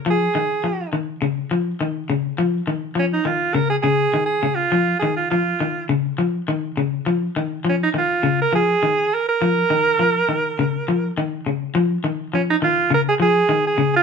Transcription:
X:1
M:4/4
L:1/16
Q:1/4=102
K:Bbm
V:1 name="Alto saxophone"
A6 z8 z2 | z4 D E F2 B A A3 A2 F- | F2 A F F4 z8 | z4 D E F3 B A4 B B- |
B12 z4 | z4 D E F2 B A A3 A2 F |]
V:2 name="Clean electric guitar" clef=bass
F,2 E,2 F,2 E,2 D,2 F,2 E,2 D,2 | F,2 E,2 F,2 E,2 D,2 D,2 E,2 D,2 | F,2 E,2 F,2 E,2 D,2 F,2 E,2 D,2 | F,2 E,2 F,2 E,2 D,2 F,2 E,2 z2 |
F,2 E,2 F,2 E,2 D,2 F,2 E,2 D,2 | F,2 E,2 F,2 E,2 D,2 F,2 E,2 D,2 |]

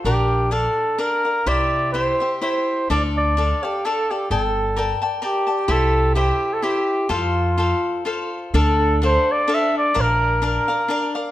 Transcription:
X:1
M:3/4
L:1/16
Q:"Swing" 1/4=127
K:F
V:1 name="Cavaquinho"
[DBdf]4 [Ddf]4 [DBdf]2 [Bdf]2 | [EGce]4 [EGce]2 [Gce]2 [EGce]4 | [DAdf]4 [DAdf]2 [Adf]2 [DAdf]2 [Adf]2 | [dga]4 [Bdga]2 [dga]2 [Bdga]2 [dga]2 |
[EGce]4 [EGce]4 [EGce]4 | [FAcf]4 [FAcf]4 [FAcf]4 | [K:Dm] [DAdf]4 [DAdf]4 [DAdf]4 | [DBdf]4 [DBdf]2 [Bdf]2 [DBdf]2 [Bdf]2 |]
V:2 name="Trumpet"
G4 A4 B4 | d4 c4 c4 | d2 d4 G2 A2 G2 | A6 z2 G4 |
A4 G3 A G4 | F8 z4 | [K:Dm] A4 c2 d2 e2 d2 | B4 B6 z2 |]
V:3 name="Upright bass" clef=bass
B,,,8 z4 | C,,8 z4 | D,,8 z4 | G,,,8 z4 |
C,,8 z4 | F,,8 z4 | [K:Dm] D,,8 z4 | B,,,8 z4 |]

